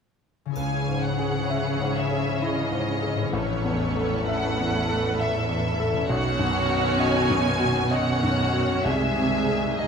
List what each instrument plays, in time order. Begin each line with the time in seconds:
0.45 harp C#3 C#4
0.50 harp E4 G#4
0.55 grand piano C#2, cello section C#3, viola section E3 C#4, violin section G#4 C#5 G#5, triangle
0.89 grand piano G#2
1.03 violin section F#5
1.19 grand piano G#4
1.50 grand piano E5
1.80 grand piano G#2
1.95 violin section E5
2.11 grand piano G#4
2.41 grand piano E4, violin section D#5
2.72 grand piano G#2
3.02 grand piano G#4
3.15 harp A2
3.20 harp B3
3.24 harp E4
3.29 harp A4
3.33 grand piano A1, cello section A2, violin section A4 B4 C#5
3.64 grand piano E2
3.97 grand piano A4
4.28 grand piano E5, violin section F#5
4.59 grand piano E2
4.89 grand piano A4
5.19 grand piano E5, violin section E5
5.49 grand piano E2
5.80 grand piano A4
5.93 harp B2
5.97 harp C#4
6.06 grand piano B1, harp F#4, violin section F#4 C#5
6.10 cello section B2, viola section D#3 C#4, violin section F#5
6.39 grand piano F#2
6.69 grand piano F#4
7.00 grand piano D#5, violin section G#5
7.30 grand piano F#2
7.60 grand piano F#4
7.89 viola section D#3 C#4, violin section F#4 C#5 F#5, grand piano D#5
8.23 grand piano F#2
8.53 grand piano F#4
8.67 harp C4
8.72 harp G#3
8.81 cello section C3, harp G#4, violin section E5
8.85 grand piano C2, viola section D#3 G#3, violin section G#4
9.18 grand piano C3
9.48 grand piano G#4
9.78 cello section C3, viola section G#3 D#4, violin section G#4 D#5, grand piano D#5